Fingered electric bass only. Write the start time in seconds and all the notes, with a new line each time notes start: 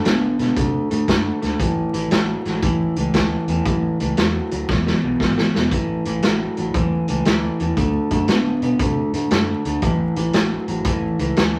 0.06 A2
0.39 B2
0.56 C3
0.92 A2
1.08 F#2
1.43 D2
1.60 A1
1.94 A1
2.12 A1
2.46 A1
2.63 A1
2.97 C#2
3.14 D2
3.48 E2
3.66 A1
4.01 C#2
4.18 E2
4.52 D2
4.69 E1
5.03 B1
5.20 G#1
5.55 E1
5.71 A1
6.06 A1
6.24 A1
6.58 A1
6.74 A1
7.10 C#2
7.27 D2
7.60 E2
7.77 D2
8.11 F#2
8.27 A2
8.62 B2
8.80 C3
9.13 A2
9.31 F#2
9.65 D2
9.82 A1
10.16 A1
10.34 A1
10.68 A1
10.85 A1
11.20 C#2
11.36 D2